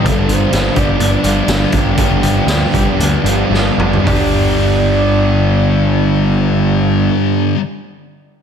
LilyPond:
<<
  \new Staff \with { instrumentName = "Soft synth lead" } { \time 4/4 \key g \mixolydian \tempo 4 = 109 a'8 c''4 d''2 g''8~ | g''2.~ g''8 r8 | d''1~ | d''1 | }
  \new Staff \with { instrumentName = "Clean electric guitar" } { \time 4/4 \key g \mixolydian f8 f4 g'8 d'8 f4 d'8 | f8 f4 g'8 d'8 f4 d'8 | <b d' g'>1~ | <b d' g'>1 | }
  \new Staff \with { instrumentName = "Overdriven electric guitar" } { \time 4/4 \key g \mixolydian <g, d f b d'>4 <d f b d'>8 <f b d'>4 <f b d'>8 <d f b d'>4 | <g, d f b d'>4 <d f b d'>8 <f b d'>4 <f b d'>8 <d f b d'>4 | <g, d g b d' g'>1~ | <g, d g b d' g'>1 | }
  \new Staff \with { instrumentName = "Distorted electric guitar" } { \clef bass \time 4/4 \key g \mixolydian <g, d g>4 <g, d g>8 <d g>8 <g, d g>8 <d g>8 <g, d g>4 | <g, d g>4 <g, d g>8 <d g>8 <g, d g>8 <d g>8 <g, d g>4 | <g, d g>1~ | <g, d g>1 | }
  \new Staff \with { instrumentName = "Picked electric bass" } { \clef bass \time 4/4 \key g \mixolydian g,,8 g,,8 g,,8 g,,8 g,,8 g,,8 g,,8 g,,8 | g,,8 g,,8 d,8 g,,8 d,8 g,,8 g,,8 g,,8 | g,,1~ | g,,1 | }
  \new DrumStaff \with { instrumentName = "Drums" } \drummode { \time 4/4 <hh bd>8 hh8 <hh sn>8 <hh bd>8 hh8 hh8 <hh sn>8 <hh bd>8 | <hh bd>8 hh8 <hh sn>8 <hh bd>8 hh8 hh8 sn8 toml16 tomfh16 | <hho bd tomfh>4 r4 r4 r4 | r4 r4 r4 r4 | }
>>